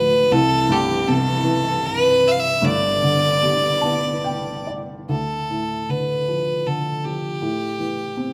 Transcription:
0.00 0.29 D1 medium
0.00 0.28 D2 medium
0.00 0.31 D2 medium
0.00 0.29 A2 medium
0.00 0.34 A2 medium
0.00 0.28 D3 medium
0.00 0.29 F3 medium
0.00 0.31 F3 medium
0.00 0.33 B4 medium
0.32 2.60 C2 medium
0.32 2.62 C2 medium
0.32 5.07 G2 medium
0.32 2.63 E3 medium
0.32 0.73 A4 loud
0.69 2.20 G2 medium
0.69 1.10 G4 medium
1.08 2.60 C3 medium
1.08 1.87 A4 loud
1.44 2.60 E3 medium
1.86 2.29 B4 loud
2.27 2.33 E5 loud
2.31 2.41 F5 medium
2.40 2.66 E5 loud
2.62 5.05 G1 medium
2.62 5.05 G2 medium
2.62 5.08 D3 medium
2.62 5.09 B3 medium
2.62 4.69 D5 loud
3.03 4.64 D3 soft
3.43 5.06 G3 soft
3.81 5.05 B3 medium
3.81 4.22 A5 medium
4.24 4.65 G5 medium
4.67 5.07 D5 medium
5.09 7.38 D2 soft
5.09 5.92 A4 medium
5.50 7.00 A2 soft
5.89 6.65 D3 soft
5.89 6.68 B4 medium
6.28 7.03 F3 soft
6.66 7.40 D3 soft
6.66 7.06 A4 medium
7.04 7.41 F3 soft
7.04 8.33 G4 medium
7.41 8.33 A2 medium
7.79 8.33 E3 soft
8.17 8.33 C4 soft

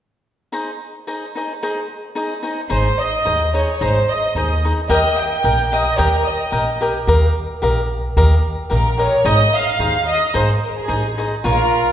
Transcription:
0.52 0.70 D#4 soft
0.52 0.70 G#4 soft
0.52 0.70 C5 medium
0.52 0.70 D#5 medium
1.07 1.24 D#4 soft
1.07 1.24 G#4 soft
1.07 1.25 C5 soft
1.07 1.25 D#5 soft
1.35 1.51 D#4 soft
1.35 1.52 G#4 soft
1.35 1.52 C5 soft
1.35 1.52 D#5 soft
1.62 1.79 D#4 medium
1.62 1.79 G#4 medium
1.62 1.79 C5 medium
1.62 1.79 D#5 medium
2.15 2.33 D#4 soft
2.15 2.33 G#4 soft
2.15 2.33 C5 soft
2.15 2.34 D#5 soft
2.43 2.59 D#4 soft
2.43 2.60 G#4 soft
2.43 2.60 C5 soft
2.43 2.60 D#5 soft
2.69 2.89 G#1 medium
2.69 2.87 D#4 medium
2.69 2.88 G#4 medium
2.69 2.88 C5 medium
2.69 2.98 C5 medium
2.69 2.88 D#5 medium
3.00 3.55 D#5 medium
3.25 3.62 D#2 medium
3.25 3.43 D#4 soft
3.25 3.43 G#4 soft
3.25 3.43 C5 soft
3.25 3.43 D#5 soft
3.54 3.70 D#4 soft
3.54 3.70 G#4 soft
3.54 3.71 C5 soft
3.54 3.80 C#5 medium
3.54 3.71 D#5 soft
3.81 3.99 G#1 medium
3.81 3.98 D#4 medium
3.81 3.98 G#4 medium
3.81 3.98 C5 medium
3.81 4.10 C5 medium
3.81 3.98 D#5 medium
4.11 4.64 D#5 medium
4.35 4.70 D#2 medium
4.35 4.52 D#4 soft
4.35 4.53 G#4 soft
4.35 4.53 C5 medium
4.35 4.53 D#5 soft
4.65 4.80 D#4 soft
4.65 4.80 G#4 soft
4.65 4.80 C5 soft
4.65 4.80 D#5 soft
4.89 5.08 D#2 medium
4.89 5.06 G4 medium
4.89 5.07 A#4 medium
4.89 5.07 D#5 medium
4.89 5.17 D#5 medium
4.89 5.07 G5 medium
5.19 5.72 G5 medium
5.43 5.79 A#1 medium
5.43 5.60 G4 soft
5.43 5.61 A#4 soft
5.43 5.61 D#5 medium
5.43 5.61 G5 medium
5.72 5.88 G4 soft
5.72 5.88 A#4 soft
5.72 5.98 D#5 medium
5.72 5.88 D#5 soft
5.72 5.89 G5 soft
5.98 6.17 D#2 medium
5.98 6.15 G4 medium
5.98 6.15 A#4 medium
5.98 6.26 A#4 medium
5.98 6.15 D#5 medium
5.98 6.15 G5 medium
6.26 6.81 D#5 medium
6.51 6.88 A#1 medium
6.51 6.69 G4 soft
6.51 6.69 A#4 medium
6.51 6.69 D#5 soft
6.51 6.70 G5 soft
6.81 6.97 G4 soft
6.81 6.97 A#4 soft
6.81 6.97 D#5 soft
6.81 6.98 G5 soft
7.07 7.26 D#2 medium
7.07 7.25 G4 medium
7.07 7.25 A#4 medium
7.07 7.25 D#5 medium
7.07 7.25 F5 medium
7.62 7.98 A#1 medium
7.62 7.79 G4 soft
7.62 7.79 A#4 soft
7.62 7.80 D#5 soft
7.62 7.80 F5 soft
8.17 8.35 D#2 medium
8.17 8.34 G4 medium
8.17 8.34 A#4 medium
8.17 8.34 D#5 medium
8.17 8.34 F5 medium
8.70 9.06 A#1 medium
8.70 8.87 G4 soft
8.70 8.87 A#4 soft
8.70 8.88 D#5 soft
8.70 8.88 F5 medium
8.74 8.99 A#4 medium
8.98 9.14 G4 soft
8.98 9.14 A#4 soft
8.98 9.24 C#5 medium
8.98 9.15 D#5 soft
8.98 9.15 F5 soft
9.25 9.43 G#1 medium
9.25 9.42 D#4 medium
9.25 9.42 G#4 medium
9.25 9.42 C5 medium
9.25 9.42 D#5 medium
9.25 9.54 D#5 loud
9.55 10.09 F5 medium
9.79 10.15 D#2 medium
9.79 9.96 D#4 soft
9.79 9.97 G#4 soft
9.79 9.97 C5 soft
9.79 9.97 D#5 medium
10.09 10.33 D#5 medium
10.34 10.53 G#1 medium
10.34 10.51 D#4 medium
10.34 10.51 G#4 medium
10.34 10.51 C5 medium
10.34 10.48 C5 medium
10.34 10.52 D#5 medium
10.63 10.75 A#4 medium
10.79 11.19 G#4 medium
10.88 11.25 A1 medium
10.88 11.05 D#4 soft
10.88 11.06 G#4 soft
10.88 11.06 C5 soft
10.88 11.06 D#5 soft
11.17 11.33 D#4 soft
11.17 11.34 G#4 soft
11.17 11.34 C5 soft
11.17 11.34 D#5 soft
11.44 11.81 A#1 medium
11.44 11.61 F4 medium
11.44 11.92 F4 medium
11.44 11.61 A#4 medium
11.44 11.92 A#4 medium
11.44 11.62 C#5 medium
11.44 11.62 F5 medium

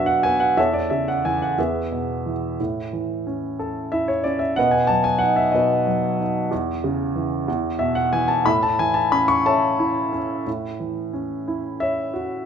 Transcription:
0.00 0.54 B2 medium
0.00 0.21 F#3 soft
0.00 0.24 B3 medium
0.00 0.56 D4 soft
0.00 0.55 F#4 medium
0.00 0.57 E5 medium
0.06 0.24 F#5 medium
0.23 0.57 B3 soft
0.23 0.41 G#5 medium
0.40 0.57 F#5 medium
0.57 1.55 E2 medium
0.57 1.55 A4 medium
0.57 1.55 C#5 medium
0.57 0.74 E5 medium
0.73 0.89 D5 medium
0.90 1.56 C#3 soft
0.90 1.08 E5 medium
1.08 1.25 F#5 medium
1.25 1.57 E3 soft
1.25 1.40 G#5 medium
1.42 1.59 F#5 medium
1.58 2.57 E2 medium
1.58 2.56 G#4 soft
1.58 2.56 B4 soft
1.58 2.30 E5 medium
1.92 2.58 B2 soft
2.26 2.59 E3 soft
2.60 4.54 A2 medium
2.93 4.21 E3 soft
3.27 4.24 C#4 soft
3.59 4.55 A4 soft
3.92 4.56 E4 soft
3.92 4.09 E5 medium
4.08 4.25 C#5 medium
4.24 4.57 C#4 soft
4.24 4.41 D5 medium
4.39 4.57 E5 medium
4.56 5.53 B2 medium
4.56 5.51 B4 medium
4.56 5.50 D#5 medium
4.56 4.74 F#5 medium
4.71 4.89 G#5 medium
4.87 5.85 F#3 soft
4.87 5.05 A5 medium
5.04 5.22 G#5 medium
5.19 6.18 D#4 soft
5.19 5.37 F#5 medium
5.36 5.54 E5 medium
5.52 6.48 B2 medium
5.52 6.47 F#4 soft
5.52 6.48 B4 soft
5.52 6.22 D#5 medium
5.87 6.49 F#3 soft
6.20 6.51 D#4 soft
6.51 7.45 E2 medium
6.84 7.46 C#3 medium
7.16 7.47 E3 medium
7.48 8.42 E2 medium
7.79 8.43 B2 soft
7.79 7.95 E5 medium
7.95 8.11 F#5 medium
8.13 8.44 E3 medium
8.13 8.28 G#5 medium
8.28 8.44 A5 medium
8.46 10.43 A2 medium
8.46 9.42 E5 medium
8.46 8.62 B5 medium
8.63 8.79 A5 medium
8.79 10.09 E3 soft
8.79 8.96 G#5 medium
8.94 9.10 A5 medium
9.12 10.11 C#4 medium
9.12 9.29 B5 medium
9.28 9.46 C#6 medium
9.46 10.44 A4 medium
9.46 10.43 C#5 medium
9.46 10.44 E5 medium
9.46 10.18 A5 medium
9.79 10.45 E4 medium
10.13 10.45 C#4 medium
10.47 12.43 A2 soft
10.80 12.10 E3 soft
11.13 12.43 C#4 soft
11.48 12.44 E4 soft
11.80 12.44 C#5 soft
11.80 12.43 E5 medium
12.14 12.46 F#4 soft

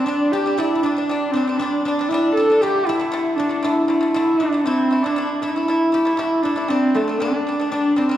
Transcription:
0.00 2.67 G3 medium
0.00 1.33 C4 medium
0.00 0.57 E4 medium
0.00 0.31 G4 medium
0.04 0.27 G3 medium
0.04 0.34 D4 medium
0.04 0.83 D4 medium
0.08 0.28 D4 medium
0.32 0.43 G3 medium
0.32 0.44 D4 medium
0.32 0.60 G4 medium
0.32 2.63 G4 medium
0.46 0.56 G3 medium
0.46 0.56 D4 medium
0.58 0.79 G3 medium
0.58 0.79 D4 medium
0.58 0.75 E4 medium
0.58 0.84 E4 medium
0.75 2.10 E4 medium
0.83 0.94 G3 medium
0.83 1.33 D4 medium
0.83 1.59 D4 medium
0.83 0.95 D4 medium
0.96 1.07 G3 medium
0.96 1.07 D4 medium
1.09 1.30 G3 medium
1.09 1.30 D4 medium
1.32 1.45 G3 medium
1.32 1.59 C4 medium
1.32 4.34 C4 medium
1.37 1.46 D4 medium
1.47 1.58 G3 medium
1.47 1.58 D4 medium
1.57 1.81 G3 medium
1.57 1.82 D4 medium
1.57 1.85 D4 medium
1.62 1.82 D4 medium
1.83 1.96 G3 medium
1.83 2.10 D4 medium
1.83 3.39 D4 medium
1.88 1.97 D4 medium
1.99 2.09 G3 medium
1.99 2.10 D4 medium
2.08 2.32 G3 medium
2.08 2.34 E4 loud
2.08 2.89 E4 medium
2.14 2.33 D4 loud
2.34 2.47 G3 medium
2.34 2.62 A4 medium
2.34 4.56 A4 medium
2.40 2.48 D4 medium
2.50 2.60 G3 medium
2.50 2.61 D4 medium
2.61 2.83 D3 medium
2.61 2.83 A3 medium
2.61 2.88 G4 loud
2.61 4.99 G4 medium
2.87 2.97 D3 medium
2.87 2.99 A3 medium
2.87 3.37 E4 loud
2.87 3.65 E4 medium
3.00 3.10 D3 medium
3.00 3.11 A3 medium
3.12 3.33 D3 medium
3.12 3.34 A3 loud
3.36 3.48 D3 medium
3.36 3.49 A3 medium
3.36 3.66 D4 medium
3.36 4.39 D4 medium
3.49 3.61 D3 medium
3.49 3.61 A3 medium
3.63 3.84 D3 medium
3.63 3.85 A3 loud
3.63 3.87 E4 medium
3.63 4.15 E4 medium
3.88 3.99 D3 medium
3.88 4.00 A3 medium
3.88 4.12 E4 medium
4.01 4.12 D3 medium
4.01 4.13 A3 medium
4.13 4.35 D3 medium
4.13 4.36 A3 loud
4.13 4.39 E4 medium
4.13 5.42 E4 medium
4.38 4.51 D3 medium
4.38 4.66 D4 medium
4.38 5.05 D4 medium
4.42 4.52 A3 medium
4.53 4.63 D3 medium
4.53 4.64 A3 medium
4.64 4.87 A3 medium
4.64 5.04 C4 medium
4.64 6.70 C4 medium
4.64 4.87 E4 medium
4.91 5.02 A3 medium
4.91 5.02 E4 medium
5.02 5.15 A3 medium
5.02 5.43 D4 medium
5.02 6.45 D4 medium
5.02 5.16 E4 medium
5.16 5.37 A3 medium
5.16 5.38 E4 medium
5.41 5.53 A3 medium
5.41 6.15 E4 medium
5.41 6.18 E4 medium
5.41 5.54 E4 medium
5.56 5.66 A3 medium
5.56 5.67 E4 medium
5.68 5.89 A3 medium
5.68 5.90 E4 medium
5.92 6.03 A3 medium
5.92 6.04 E4 medium
5.92 8.17 G4 medium
6.05 6.16 A3 medium
6.05 6.17 E4 medium
6.16 6.39 A3 medium
6.16 6.44 E4 medium
6.16 8.17 E4 medium
6.16 6.40 E4 medium
6.42 6.55 A3 medium
6.42 6.70 D4 medium
6.42 7.21 D4 medium
6.42 6.55 E4 medium
6.56 6.67 A3 medium
6.56 6.68 E4 medium
6.68 6.90 G3 medium
6.68 6.97 C4 loud
6.68 7.97 C4 medium
6.68 6.91 D4 medium
6.94 7.06 G3 medium
6.94 7.20 A3 medium
6.94 8.17 A3 medium
6.94 7.07 D4 medium
7.08 7.19 G3 medium
7.08 7.19 D4 medium
7.19 7.42 G3 medium
7.19 7.68 D4 medium
7.19 7.71 D4 medium
7.19 7.42 D4 loud
7.47 7.57 G3 medium
7.47 7.58 D4 medium
7.60 7.70 G3 medium
7.60 7.71 D4 medium
7.69 7.93 G3 medium
7.69 7.98 D4 medium
7.69 8.17 D4 medium
7.73 7.94 D4 medium
7.96 8.08 G3 medium
7.96 8.17 C4 medium
7.96 8.08 D4 medium
8.09 8.17 G3 medium
8.09 8.17 D4 medium

